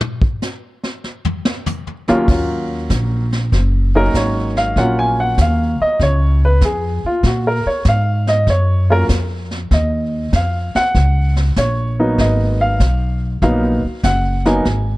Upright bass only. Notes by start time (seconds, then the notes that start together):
2.09 muted upright bass stroke
2.28 D#2
2.90 A#1
3.52 F#1
4.14 G#1
4.76 A#1
5.38 D#2
5.80 muted upright bass stroke
6.00 C#2
6.61 F2
7.04 muted upright bass stroke
7.23 A#2
7.66 muted upright bass stroke
7.85 G#2
8.47 F#2
9.09 F2
9.71 D#2
10.32 F2
10.75 muted upright bass stroke
10.95 C#2
11.57 A#1
12.18 G#1
12.80 B1
13.42 A#1
13.84 muted upright bass stroke
14.04 F#1
14.65 G#1